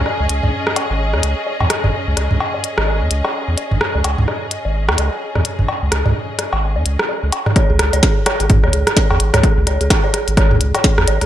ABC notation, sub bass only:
X:1
M:4/4
L:1/16
Q:"Swing 16ths" 1/4=128
K:C#m
V:1 name="Sub bass" clef=bass
z C,, C,, C,, z3 G,,,2 E,, C,, z2 E,, z G,,, | z C,, C,, C,, z3 G,,,2 E,, C,, z2 E,, z G,,, | z C,, C,, C,, z3 G,,,2 E,, C,, z2 E,, z G,,, | z C,, C,, C,, z3 G,,,2 E,, C,, z2 C,, z2 |
z C,, C,, C,, z3 G,,,2 E,, C,, z2 E,, G,,, C,, | z C,, C,, C,, z3 G,,,2 E,, C,, z2 E,, G,,, C,, |]